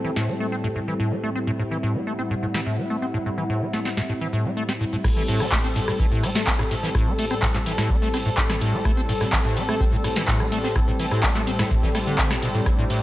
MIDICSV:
0, 0, Header, 1, 5, 480
1, 0, Start_track
1, 0, Tempo, 476190
1, 1244, Time_signature, 4, 2, 24, 8
1, 13130, End_track
2, 0, Start_track
2, 0, Title_t, "Ambient pad"
2, 0, Program_c, 0, 92
2, 0, Note_on_c, 0, 64, 70
2, 0, Note_on_c, 0, 69, 71
2, 0, Note_on_c, 0, 72, 77
2, 0, Note_on_c, 0, 79, 75
2, 1464, Note_on_c, 0, 78, 73
2, 1488, Note_off_c, 0, 79, 0
2, 5083, Note_off_c, 0, 69, 0
2, 5084, Note_off_c, 0, 72, 0
2, 5085, Note_off_c, 0, 64, 0
2, 5109, Note_off_c, 0, 78, 0
2, 13130, End_track
3, 0, Start_track
3, 0, Title_t, "Analog synth pad"
3, 0, Program_c, 1, 89
3, 0, Note_on_c, 1, 45, 81
3, 0, Note_on_c, 1, 55, 75
3, 0, Note_on_c, 1, 60, 76
3, 0, Note_on_c, 1, 69, 90
3, 1230, Note_off_c, 1, 69, 0
3, 1244, Note_on_c, 1, 64, 91
3, 5044, Note_off_c, 1, 55, 0
3, 5044, Note_off_c, 1, 60, 0
3, 5045, Note_off_c, 1, 45, 0
3, 5070, Note_off_c, 1, 64, 0
3, 5084, Note_on_c, 1, 45, 85
3, 5084, Note_on_c, 1, 60, 79
3, 5084, Note_on_c, 1, 69, 94
3, 5085, Note_on_c, 1, 55, 78
3, 12748, Note_off_c, 1, 69, 0
3, 12764, Note_on_c, 1, 62, 98
3, 13130, Note_off_c, 1, 45, 0
3, 13130, Note_off_c, 1, 55, 0
3, 13130, Note_off_c, 1, 60, 0
3, 13130, Note_off_c, 1, 62, 0
3, 13130, End_track
4, 0, Start_track
4, 0, Title_t, "Acid bass"
4, 0, Program_c, 2, 38
4, 45, Note_on_c, 2, 52, 75
4, 111, Note_off_c, 2, 52, 0
4, 166, Note_on_c, 2, 45, 96
4, 287, Note_on_c, 2, 57, 81
4, 302, Note_off_c, 2, 45, 0
4, 352, Note_off_c, 2, 57, 0
4, 407, Note_on_c, 2, 57, 74
4, 472, Note_off_c, 2, 57, 0
4, 526, Note_on_c, 2, 60, 75
4, 565, Note_off_c, 2, 60, 0
4, 646, Note_on_c, 2, 45, 98
4, 685, Note_off_c, 2, 45, 0
4, 764, Note_on_c, 2, 45, 82
4, 804, Note_off_c, 2, 45, 0
4, 886, Note_on_c, 2, 52, 77
4, 951, Note_off_c, 2, 52, 0
4, 1005, Note_on_c, 2, 45, 95
4, 1124, Note_on_c, 2, 57, 75
4, 1139, Note_off_c, 2, 45, 0
4, 1190, Note_off_c, 2, 57, 0
4, 1245, Note_on_c, 2, 57, 81
4, 1311, Note_off_c, 2, 57, 0
4, 1366, Note_on_c, 2, 60, 75
4, 1405, Note_off_c, 2, 60, 0
4, 1485, Note_on_c, 2, 45, 100
4, 1525, Note_off_c, 2, 45, 0
4, 1607, Note_on_c, 2, 45, 73
4, 1645, Note_off_c, 2, 45, 0
4, 1727, Note_on_c, 2, 52, 80
4, 1792, Note_off_c, 2, 52, 0
4, 1848, Note_on_c, 2, 45, 96
4, 1967, Note_on_c, 2, 57, 75
4, 1982, Note_off_c, 2, 45, 0
4, 2032, Note_off_c, 2, 57, 0
4, 2088, Note_on_c, 2, 57, 72
4, 2152, Note_off_c, 2, 57, 0
4, 2205, Note_on_c, 2, 60, 82
4, 2244, Note_off_c, 2, 60, 0
4, 2326, Note_on_c, 2, 45, 98
4, 2365, Note_off_c, 2, 45, 0
4, 2445, Note_on_c, 2, 45, 74
4, 2485, Note_off_c, 2, 45, 0
4, 2567, Note_on_c, 2, 52, 75
4, 2631, Note_off_c, 2, 52, 0
4, 2686, Note_on_c, 2, 45, 100
4, 2807, Note_on_c, 2, 57, 74
4, 2822, Note_off_c, 2, 45, 0
4, 2871, Note_off_c, 2, 57, 0
4, 2925, Note_on_c, 2, 57, 74
4, 2991, Note_off_c, 2, 57, 0
4, 3046, Note_on_c, 2, 60, 74
4, 3085, Note_off_c, 2, 60, 0
4, 3166, Note_on_c, 2, 45, 97
4, 3205, Note_off_c, 2, 45, 0
4, 3287, Note_on_c, 2, 45, 73
4, 3325, Note_off_c, 2, 45, 0
4, 3405, Note_on_c, 2, 52, 73
4, 3471, Note_off_c, 2, 52, 0
4, 3526, Note_on_c, 2, 45, 99
4, 3646, Note_on_c, 2, 57, 78
4, 3661, Note_off_c, 2, 45, 0
4, 3712, Note_off_c, 2, 57, 0
4, 3766, Note_on_c, 2, 57, 74
4, 3831, Note_off_c, 2, 57, 0
4, 3886, Note_on_c, 2, 60, 73
4, 3925, Note_off_c, 2, 60, 0
4, 4007, Note_on_c, 2, 45, 97
4, 4045, Note_off_c, 2, 45, 0
4, 4127, Note_on_c, 2, 45, 81
4, 4166, Note_off_c, 2, 45, 0
4, 4247, Note_on_c, 2, 52, 74
4, 4312, Note_off_c, 2, 52, 0
4, 4366, Note_on_c, 2, 45, 100
4, 4486, Note_on_c, 2, 57, 75
4, 4501, Note_off_c, 2, 45, 0
4, 4551, Note_off_c, 2, 57, 0
4, 4605, Note_on_c, 2, 57, 83
4, 4671, Note_off_c, 2, 57, 0
4, 4727, Note_on_c, 2, 60, 77
4, 4765, Note_off_c, 2, 60, 0
4, 4846, Note_on_c, 2, 45, 97
4, 4885, Note_off_c, 2, 45, 0
4, 4968, Note_on_c, 2, 45, 75
4, 5006, Note_off_c, 2, 45, 0
4, 5088, Note_on_c, 2, 45, 86
4, 5126, Note_off_c, 2, 45, 0
4, 5208, Note_on_c, 2, 52, 76
4, 5272, Note_off_c, 2, 52, 0
4, 5326, Note_on_c, 2, 45, 104
4, 5447, Note_on_c, 2, 57, 78
4, 5462, Note_off_c, 2, 45, 0
4, 5511, Note_off_c, 2, 57, 0
4, 5565, Note_on_c, 2, 57, 84
4, 5631, Note_off_c, 2, 57, 0
4, 5687, Note_on_c, 2, 60, 76
4, 5725, Note_off_c, 2, 60, 0
4, 5805, Note_on_c, 2, 45, 107
4, 5845, Note_off_c, 2, 45, 0
4, 5927, Note_on_c, 2, 45, 77
4, 5965, Note_off_c, 2, 45, 0
4, 6046, Note_on_c, 2, 52, 88
4, 6111, Note_off_c, 2, 52, 0
4, 6165, Note_on_c, 2, 45, 102
4, 6284, Note_on_c, 2, 57, 80
4, 6299, Note_off_c, 2, 45, 0
4, 6351, Note_off_c, 2, 57, 0
4, 6407, Note_on_c, 2, 57, 76
4, 6471, Note_off_c, 2, 57, 0
4, 6525, Note_on_c, 2, 60, 86
4, 6565, Note_off_c, 2, 60, 0
4, 6645, Note_on_c, 2, 45, 103
4, 6685, Note_off_c, 2, 45, 0
4, 6764, Note_on_c, 2, 45, 77
4, 6804, Note_off_c, 2, 45, 0
4, 6885, Note_on_c, 2, 52, 80
4, 6951, Note_off_c, 2, 52, 0
4, 7005, Note_on_c, 2, 45, 106
4, 7125, Note_on_c, 2, 57, 78
4, 7140, Note_off_c, 2, 45, 0
4, 7191, Note_off_c, 2, 57, 0
4, 7245, Note_on_c, 2, 57, 77
4, 7311, Note_off_c, 2, 57, 0
4, 7365, Note_on_c, 2, 60, 77
4, 7404, Note_off_c, 2, 60, 0
4, 7485, Note_on_c, 2, 45, 101
4, 7524, Note_off_c, 2, 45, 0
4, 7606, Note_on_c, 2, 45, 77
4, 7645, Note_off_c, 2, 45, 0
4, 7724, Note_on_c, 2, 52, 80
4, 7791, Note_off_c, 2, 52, 0
4, 7845, Note_on_c, 2, 45, 98
4, 7964, Note_on_c, 2, 57, 87
4, 7979, Note_off_c, 2, 45, 0
4, 8030, Note_off_c, 2, 57, 0
4, 8085, Note_on_c, 2, 57, 78
4, 8151, Note_off_c, 2, 57, 0
4, 8205, Note_on_c, 2, 60, 79
4, 8244, Note_off_c, 2, 60, 0
4, 8326, Note_on_c, 2, 45, 101
4, 8365, Note_off_c, 2, 45, 0
4, 8444, Note_on_c, 2, 45, 84
4, 8484, Note_off_c, 2, 45, 0
4, 8565, Note_on_c, 2, 52, 80
4, 8631, Note_off_c, 2, 52, 0
4, 8684, Note_on_c, 2, 45, 99
4, 8805, Note_on_c, 2, 57, 79
4, 8820, Note_off_c, 2, 45, 0
4, 8871, Note_off_c, 2, 57, 0
4, 8924, Note_on_c, 2, 57, 83
4, 8991, Note_off_c, 2, 57, 0
4, 9045, Note_on_c, 2, 60, 78
4, 9084, Note_off_c, 2, 60, 0
4, 9163, Note_on_c, 2, 45, 102
4, 9204, Note_off_c, 2, 45, 0
4, 9283, Note_on_c, 2, 45, 77
4, 9324, Note_off_c, 2, 45, 0
4, 9404, Note_on_c, 2, 52, 85
4, 9470, Note_off_c, 2, 52, 0
4, 9524, Note_on_c, 2, 45, 102
4, 9645, Note_on_c, 2, 57, 78
4, 9660, Note_off_c, 2, 45, 0
4, 9711, Note_off_c, 2, 57, 0
4, 9766, Note_on_c, 2, 57, 76
4, 9831, Note_off_c, 2, 57, 0
4, 9886, Note_on_c, 2, 60, 84
4, 9925, Note_off_c, 2, 60, 0
4, 10005, Note_on_c, 2, 45, 104
4, 10044, Note_off_c, 2, 45, 0
4, 10125, Note_on_c, 2, 45, 78
4, 10164, Note_off_c, 2, 45, 0
4, 10244, Note_on_c, 2, 52, 79
4, 10310, Note_off_c, 2, 52, 0
4, 10364, Note_on_c, 2, 45, 106
4, 10485, Note_on_c, 2, 57, 78
4, 10500, Note_off_c, 2, 45, 0
4, 10551, Note_off_c, 2, 57, 0
4, 10605, Note_on_c, 2, 57, 78
4, 10671, Note_off_c, 2, 57, 0
4, 10727, Note_on_c, 2, 60, 78
4, 10765, Note_off_c, 2, 60, 0
4, 10844, Note_on_c, 2, 45, 101
4, 10884, Note_off_c, 2, 45, 0
4, 10965, Note_on_c, 2, 45, 77
4, 11004, Note_off_c, 2, 45, 0
4, 11084, Note_on_c, 2, 52, 78
4, 11151, Note_off_c, 2, 52, 0
4, 11204, Note_on_c, 2, 45, 103
4, 11324, Note_on_c, 2, 57, 86
4, 11339, Note_off_c, 2, 45, 0
4, 11391, Note_off_c, 2, 57, 0
4, 11444, Note_on_c, 2, 57, 76
4, 11510, Note_off_c, 2, 57, 0
4, 11564, Note_on_c, 2, 60, 79
4, 11604, Note_off_c, 2, 60, 0
4, 11685, Note_on_c, 2, 45, 104
4, 11724, Note_off_c, 2, 45, 0
4, 11806, Note_on_c, 2, 45, 85
4, 11845, Note_off_c, 2, 45, 0
4, 11927, Note_on_c, 2, 52, 78
4, 11991, Note_off_c, 2, 52, 0
4, 12045, Note_on_c, 2, 57, 78
4, 12084, Note_off_c, 2, 57, 0
4, 12166, Note_on_c, 2, 50, 77
4, 12406, Note_on_c, 2, 45, 79
4, 12421, Note_off_c, 2, 50, 0
4, 12471, Note_off_c, 2, 45, 0
4, 12525, Note_on_c, 2, 47, 76
4, 12591, Note_off_c, 2, 47, 0
4, 12646, Note_on_c, 2, 45, 81
4, 12711, Note_off_c, 2, 45, 0
4, 12765, Note_on_c, 2, 45, 84
4, 12805, Note_off_c, 2, 45, 0
4, 12886, Note_on_c, 2, 45, 101
4, 12951, Note_off_c, 2, 45, 0
4, 13005, Note_on_c, 2, 45, 100
4, 13130, Note_off_c, 2, 45, 0
4, 13130, End_track
5, 0, Start_track
5, 0, Title_t, "Drums"
5, 165, Note_on_c, 9, 38, 60
5, 266, Note_off_c, 9, 38, 0
5, 2565, Note_on_c, 9, 38, 81
5, 2666, Note_off_c, 9, 38, 0
5, 3765, Note_on_c, 9, 38, 37
5, 3866, Note_off_c, 9, 38, 0
5, 3885, Note_on_c, 9, 38, 36
5, 3986, Note_off_c, 9, 38, 0
5, 4005, Note_on_c, 9, 38, 60
5, 4106, Note_off_c, 9, 38, 0
5, 4725, Note_on_c, 9, 38, 60
5, 4826, Note_off_c, 9, 38, 0
5, 5085, Note_on_c, 9, 36, 120
5, 5085, Note_on_c, 9, 37, 55
5, 5085, Note_on_c, 9, 49, 104
5, 5087, Note_on_c, 9, 42, 80
5, 5186, Note_off_c, 9, 36, 0
5, 5186, Note_off_c, 9, 37, 0
5, 5186, Note_off_c, 9, 49, 0
5, 5187, Note_off_c, 9, 42, 0
5, 5325, Note_on_c, 9, 46, 107
5, 5325, Note_on_c, 9, 51, 81
5, 5326, Note_on_c, 9, 42, 73
5, 5426, Note_off_c, 9, 46, 0
5, 5426, Note_off_c, 9, 51, 0
5, 5427, Note_off_c, 9, 42, 0
5, 5445, Note_on_c, 9, 38, 38
5, 5446, Note_on_c, 9, 37, 39
5, 5546, Note_off_c, 9, 38, 0
5, 5547, Note_off_c, 9, 37, 0
5, 5564, Note_on_c, 9, 38, 118
5, 5564, Note_on_c, 9, 39, 125
5, 5565, Note_on_c, 9, 36, 119
5, 5566, Note_on_c, 9, 46, 89
5, 5664, Note_off_c, 9, 39, 0
5, 5665, Note_off_c, 9, 38, 0
5, 5666, Note_off_c, 9, 36, 0
5, 5667, Note_off_c, 9, 46, 0
5, 5799, Note_on_c, 9, 42, 69
5, 5806, Note_on_c, 9, 46, 105
5, 5806, Note_on_c, 9, 51, 83
5, 5900, Note_off_c, 9, 42, 0
5, 5907, Note_off_c, 9, 46, 0
5, 5907, Note_off_c, 9, 51, 0
5, 5926, Note_on_c, 9, 37, 58
5, 6027, Note_off_c, 9, 37, 0
5, 6045, Note_on_c, 9, 36, 119
5, 6048, Note_on_c, 9, 42, 84
5, 6146, Note_off_c, 9, 36, 0
5, 6149, Note_off_c, 9, 42, 0
5, 6162, Note_on_c, 9, 42, 47
5, 6262, Note_off_c, 9, 42, 0
5, 6284, Note_on_c, 9, 37, 38
5, 6284, Note_on_c, 9, 46, 109
5, 6284, Note_on_c, 9, 51, 84
5, 6288, Note_on_c, 9, 42, 71
5, 6385, Note_off_c, 9, 37, 0
5, 6385, Note_off_c, 9, 46, 0
5, 6385, Note_off_c, 9, 51, 0
5, 6389, Note_off_c, 9, 42, 0
5, 6405, Note_on_c, 9, 38, 81
5, 6506, Note_off_c, 9, 38, 0
5, 6523, Note_on_c, 9, 39, 126
5, 6525, Note_on_c, 9, 36, 120
5, 6526, Note_on_c, 9, 38, 117
5, 6533, Note_on_c, 9, 42, 85
5, 6623, Note_off_c, 9, 39, 0
5, 6626, Note_off_c, 9, 36, 0
5, 6627, Note_off_c, 9, 38, 0
5, 6634, Note_off_c, 9, 42, 0
5, 6644, Note_on_c, 9, 37, 58
5, 6745, Note_off_c, 9, 37, 0
5, 6764, Note_on_c, 9, 46, 105
5, 6764, Note_on_c, 9, 51, 83
5, 6773, Note_on_c, 9, 42, 74
5, 6865, Note_off_c, 9, 46, 0
5, 6865, Note_off_c, 9, 51, 0
5, 6873, Note_off_c, 9, 42, 0
5, 6888, Note_on_c, 9, 38, 53
5, 6989, Note_off_c, 9, 38, 0
5, 7004, Note_on_c, 9, 37, 55
5, 7005, Note_on_c, 9, 36, 121
5, 7009, Note_on_c, 9, 42, 99
5, 7105, Note_off_c, 9, 37, 0
5, 7106, Note_off_c, 9, 36, 0
5, 7110, Note_off_c, 9, 42, 0
5, 7240, Note_on_c, 9, 42, 68
5, 7244, Note_on_c, 9, 46, 112
5, 7244, Note_on_c, 9, 51, 81
5, 7341, Note_off_c, 9, 42, 0
5, 7345, Note_off_c, 9, 46, 0
5, 7345, Note_off_c, 9, 51, 0
5, 7366, Note_on_c, 9, 37, 39
5, 7466, Note_off_c, 9, 37, 0
5, 7479, Note_on_c, 9, 42, 95
5, 7483, Note_on_c, 9, 39, 125
5, 7485, Note_on_c, 9, 36, 126
5, 7489, Note_on_c, 9, 38, 121
5, 7579, Note_off_c, 9, 42, 0
5, 7584, Note_off_c, 9, 39, 0
5, 7586, Note_off_c, 9, 36, 0
5, 7590, Note_off_c, 9, 38, 0
5, 7604, Note_on_c, 9, 39, 41
5, 7605, Note_on_c, 9, 38, 37
5, 7704, Note_off_c, 9, 39, 0
5, 7705, Note_off_c, 9, 38, 0
5, 7723, Note_on_c, 9, 46, 113
5, 7723, Note_on_c, 9, 51, 80
5, 7726, Note_on_c, 9, 42, 73
5, 7824, Note_off_c, 9, 46, 0
5, 7824, Note_off_c, 9, 51, 0
5, 7827, Note_off_c, 9, 42, 0
5, 7843, Note_on_c, 9, 37, 59
5, 7843, Note_on_c, 9, 38, 61
5, 7848, Note_off_c, 9, 38, 0
5, 7848, Note_on_c, 9, 38, 45
5, 7944, Note_off_c, 9, 37, 0
5, 7949, Note_off_c, 9, 38, 0
5, 7965, Note_on_c, 9, 36, 125
5, 7966, Note_on_c, 9, 42, 84
5, 8066, Note_off_c, 9, 36, 0
5, 8067, Note_off_c, 9, 42, 0
5, 8077, Note_on_c, 9, 38, 46
5, 8178, Note_off_c, 9, 38, 0
5, 8200, Note_on_c, 9, 42, 67
5, 8203, Note_on_c, 9, 37, 39
5, 8203, Note_on_c, 9, 46, 116
5, 8203, Note_on_c, 9, 51, 82
5, 8207, Note_on_c, 9, 38, 49
5, 8300, Note_off_c, 9, 42, 0
5, 8304, Note_off_c, 9, 37, 0
5, 8304, Note_off_c, 9, 46, 0
5, 8304, Note_off_c, 9, 51, 0
5, 8308, Note_off_c, 9, 38, 0
5, 8441, Note_on_c, 9, 38, 108
5, 8442, Note_on_c, 9, 39, 126
5, 8443, Note_on_c, 9, 42, 89
5, 8445, Note_on_c, 9, 36, 122
5, 8542, Note_off_c, 9, 38, 0
5, 8543, Note_off_c, 9, 39, 0
5, 8544, Note_off_c, 9, 42, 0
5, 8546, Note_off_c, 9, 36, 0
5, 8562, Note_on_c, 9, 42, 42
5, 8565, Note_on_c, 9, 37, 58
5, 8565, Note_on_c, 9, 38, 60
5, 8663, Note_off_c, 9, 42, 0
5, 8665, Note_off_c, 9, 37, 0
5, 8665, Note_off_c, 9, 38, 0
5, 8677, Note_on_c, 9, 42, 69
5, 8684, Note_on_c, 9, 46, 112
5, 8684, Note_on_c, 9, 51, 81
5, 8778, Note_off_c, 9, 42, 0
5, 8785, Note_off_c, 9, 46, 0
5, 8785, Note_off_c, 9, 51, 0
5, 8924, Note_on_c, 9, 37, 60
5, 8925, Note_on_c, 9, 36, 125
5, 8929, Note_on_c, 9, 42, 81
5, 9025, Note_off_c, 9, 37, 0
5, 9026, Note_off_c, 9, 36, 0
5, 9030, Note_off_c, 9, 42, 0
5, 9163, Note_on_c, 9, 46, 112
5, 9163, Note_on_c, 9, 51, 77
5, 9168, Note_on_c, 9, 42, 68
5, 9264, Note_off_c, 9, 46, 0
5, 9264, Note_off_c, 9, 51, 0
5, 9269, Note_off_c, 9, 42, 0
5, 9281, Note_on_c, 9, 38, 40
5, 9284, Note_on_c, 9, 37, 41
5, 9382, Note_off_c, 9, 38, 0
5, 9385, Note_off_c, 9, 37, 0
5, 9402, Note_on_c, 9, 39, 121
5, 9405, Note_on_c, 9, 36, 127
5, 9406, Note_on_c, 9, 38, 127
5, 9408, Note_on_c, 9, 46, 86
5, 9503, Note_off_c, 9, 39, 0
5, 9506, Note_off_c, 9, 36, 0
5, 9507, Note_off_c, 9, 38, 0
5, 9509, Note_off_c, 9, 46, 0
5, 9644, Note_on_c, 9, 46, 113
5, 9644, Note_on_c, 9, 51, 77
5, 9646, Note_on_c, 9, 42, 75
5, 9745, Note_off_c, 9, 46, 0
5, 9745, Note_off_c, 9, 51, 0
5, 9747, Note_off_c, 9, 42, 0
5, 9765, Note_on_c, 9, 37, 59
5, 9866, Note_off_c, 9, 37, 0
5, 9883, Note_on_c, 9, 42, 81
5, 9885, Note_on_c, 9, 36, 127
5, 9984, Note_off_c, 9, 42, 0
5, 9986, Note_off_c, 9, 36, 0
5, 9998, Note_on_c, 9, 42, 44
5, 10099, Note_off_c, 9, 42, 0
5, 10119, Note_on_c, 9, 42, 69
5, 10123, Note_on_c, 9, 37, 41
5, 10123, Note_on_c, 9, 46, 114
5, 10123, Note_on_c, 9, 51, 78
5, 10220, Note_off_c, 9, 42, 0
5, 10224, Note_off_c, 9, 37, 0
5, 10224, Note_off_c, 9, 46, 0
5, 10224, Note_off_c, 9, 51, 0
5, 10244, Note_on_c, 9, 38, 80
5, 10345, Note_off_c, 9, 38, 0
5, 10358, Note_on_c, 9, 42, 82
5, 10360, Note_on_c, 9, 38, 119
5, 10362, Note_on_c, 9, 39, 126
5, 10365, Note_on_c, 9, 36, 126
5, 10459, Note_off_c, 9, 42, 0
5, 10461, Note_off_c, 9, 38, 0
5, 10463, Note_off_c, 9, 39, 0
5, 10466, Note_off_c, 9, 36, 0
5, 10485, Note_on_c, 9, 37, 59
5, 10586, Note_off_c, 9, 37, 0
5, 10600, Note_on_c, 9, 42, 75
5, 10604, Note_on_c, 9, 46, 113
5, 10604, Note_on_c, 9, 51, 76
5, 10701, Note_off_c, 9, 42, 0
5, 10704, Note_off_c, 9, 46, 0
5, 10704, Note_off_c, 9, 51, 0
5, 10723, Note_on_c, 9, 38, 54
5, 10824, Note_off_c, 9, 38, 0
5, 10838, Note_on_c, 9, 42, 81
5, 10843, Note_on_c, 9, 37, 60
5, 10845, Note_on_c, 9, 36, 122
5, 10939, Note_off_c, 9, 42, 0
5, 10944, Note_off_c, 9, 37, 0
5, 10946, Note_off_c, 9, 36, 0
5, 11081, Note_on_c, 9, 42, 66
5, 11082, Note_on_c, 9, 46, 109
5, 11082, Note_on_c, 9, 51, 77
5, 11182, Note_off_c, 9, 42, 0
5, 11183, Note_off_c, 9, 46, 0
5, 11183, Note_off_c, 9, 51, 0
5, 11203, Note_on_c, 9, 37, 41
5, 11304, Note_off_c, 9, 37, 0
5, 11315, Note_on_c, 9, 42, 95
5, 11317, Note_on_c, 9, 38, 127
5, 11321, Note_on_c, 9, 39, 115
5, 11325, Note_on_c, 9, 36, 122
5, 11416, Note_off_c, 9, 42, 0
5, 11418, Note_off_c, 9, 38, 0
5, 11422, Note_off_c, 9, 39, 0
5, 11426, Note_off_c, 9, 36, 0
5, 11443, Note_on_c, 9, 39, 38
5, 11444, Note_on_c, 9, 38, 37
5, 11544, Note_off_c, 9, 39, 0
5, 11545, Note_off_c, 9, 38, 0
5, 11563, Note_on_c, 9, 46, 110
5, 11563, Note_on_c, 9, 51, 74
5, 11565, Note_on_c, 9, 42, 67
5, 11664, Note_off_c, 9, 46, 0
5, 11664, Note_off_c, 9, 51, 0
5, 11666, Note_off_c, 9, 42, 0
5, 11681, Note_on_c, 9, 38, 45
5, 11684, Note_off_c, 9, 38, 0
5, 11684, Note_on_c, 9, 37, 62
5, 11684, Note_on_c, 9, 38, 62
5, 11785, Note_off_c, 9, 37, 0
5, 11785, Note_off_c, 9, 38, 0
5, 11802, Note_on_c, 9, 42, 82
5, 11805, Note_on_c, 9, 36, 122
5, 11903, Note_off_c, 9, 42, 0
5, 11906, Note_off_c, 9, 36, 0
5, 11926, Note_on_c, 9, 36, 64
5, 11929, Note_on_c, 9, 38, 49
5, 12027, Note_off_c, 9, 36, 0
5, 12030, Note_off_c, 9, 38, 0
5, 12039, Note_on_c, 9, 42, 73
5, 12042, Note_on_c, 9, 38, 52
5, 12044, Note_on_c, 9, 37, 41
5, 12044, Note_on_c, 9, 46, 113
5, 12044, Note_on_c, 9, 51, 76
5, 12140, Note_off_c, 9, 42, 0
5, 12143, Note_off_c, 9, 38, 0
5, 12144, Note_off_c, 9, 37, 0
5, 12144, Note_off_c, 9, 46, 0
5, 12144, Note_off_c, 9, 51, 0
5, 12281, Note_on_c, 9, 39, 117
5, 12281, Note_on_c, 9, 42, 93
5, 12285, Note_on_c, 9, 36, 121
5, 12286, Note_on_c, 9, 38, 108
5, 12381, Note_off_c, 9, 42, 0
5, 12382, Note_off_c, 9, 39, 0
5, 12386, Note_off_c, 9, 36, 0
5, 12387, Note_off_c, 9, 38, 0
5, 12404, Note_on_c, 9, 37, 60
5, 12404, Note_on_c, 9, 38, 59
5, 12405, Note_on_c, 9, 42, 46
5, 12505, Note_off_c, 9, 37, 0
5, 12505, Note_off_c, 9, 38, 0
5, 12506, Note_off_c, 9, 42, 0
5, 12523, Note_on_c, 9, 46, 114
5, 12523, Note_on_c, 9, 51, 77
5, 12529, Note_on_c, 9, 42, 73
5, 12624, Note_off_c, 9, 46, 0
5, 12624, Note_off_c, 9, 51, 0
5, 12630, Note_off_c, 9, 42, 0
5, 12763, Note_on_c, 9, 42, 96
5, 12764, Note_on_c, 9, 37, 61
5, 12766, Note_on_c, 9, 36, 122
5, 12864, Note_off_c, 9, 37, 0
5, 12864, Note_off_c, 9, 42, 0
5, 12867, Note_off_c, 9, 36, 0
5, 13003, Note_on_c, 9, 46, 108
5, 13003, Note_on_c, 9, 51, 77
5, 13005, Note_on_c, 9, 42, 68
5, 13104, Note_off_c, 9, 46, 0
5, 13104, Note_off_c, 9, 51, 0
5, 13106, Note_off_c, 9, 42, 0
5, 13130, End_track
0, 0, End_of_file